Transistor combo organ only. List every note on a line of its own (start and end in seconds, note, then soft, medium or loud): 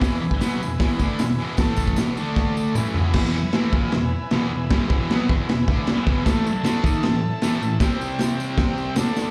0.00 1.53 B4 medium
0.00 1.54 E5 medium
0.00 1.55 G#5 medium
1.59 1.98 A4 medium
1.59 1.98 E5 medium
1.59 1.98 A5 medium
2.16 2.76 A4 medium
2.16 2.76 D5 medium
2.16 2.76 A5 medium
2.75 3.15 B4 medium
2.75 3.15 E5 medium
2.75 3.16 G#5 medium
3.16 6.23 B4 medium
3.16 6.24 E5 medium
3.16 6.24 G#5 medium
6.23 7.77 A4 medium
6.23 7.78 E5 medium
6.23 7.78 A5 medium
7.83 8.97 G4 medium
7.83 8.97 C5 medium
7.83 8.98 G5 medium
8.99 9.31 A4 medium
8.99 9.31 D5 medium
8.99 9.31 A5 medium